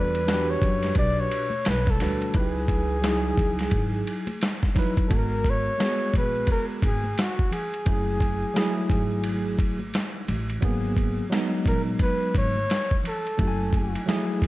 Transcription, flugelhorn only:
Already playing: B4
0.50 C#5
0.98 D5
1.21 C#5
1.69 B4
1.90 A4
2.38 G#4
5.08 A4
5.15 A#4
5.50 C#5
6.18 B4
6.51 A#4
6.85 G#4
7.19 F#4
7.53 G#4
11.68 A#4
12.02 B4
12.37 C#5
13.07 A4

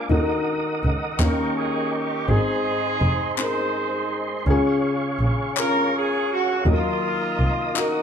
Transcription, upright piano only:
Already playing: G#3 A#3 D4 F4 C5
0.09 D#3 D#4 F#4 A4
0.20 A#4
1.20 D#3 A#3 C#4 D#4 A#4
2.28 G#2 C4 D#4 G#4
3.38 C4 D#4 A#4
4.46 C#3 C#4 F4 G#4
5.56 C#4 F4 A#4
6.66 D#3 F#3 D#4
6.70 A#4
7.74 D#4 F#4 A#4

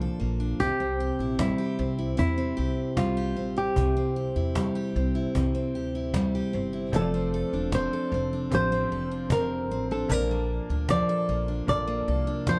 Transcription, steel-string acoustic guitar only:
Already playing: A#2 F3 A#3 D4
0.01 A4
0.20 A#3
0.40 D4
0.60 C3
0.80 C4
1.00 G4
1.20 E4
1.39 G3
1.58 G4
1.79 C4
1.99 E4
2.17 C3
2.38 C4
2.57 G4
2.97 G3
3.17 G4
3.37 C4
3.56 E4
3.78 C3
3.97 C4
4.16 G4
4.36 E4
4.56 G3
4.75 G4
4.96 C4
5.15 E4
5.35 C3
5.55 C4
5.75 G4
5.95 E4
6.15 G3
6.35 G4
6.53 C4
6.73 E4
6.94 F3
7.14 C4
7.34 A4
7.54 D4
7.73 C4
7.93 A4
8.14 C4
8.33 D4
8.52 F3
8.72 C4
8.92 A4
9.11 D4
9.32 C4
9.71 C4
9.91 D4
10.11 A#2
10.31 A#3
10.70 D4
10.90 F3
11.09 A4
11.29 A#3
11.48 D4
11.87 A#3
12.08 A4
12.27 D4
12.48 F3

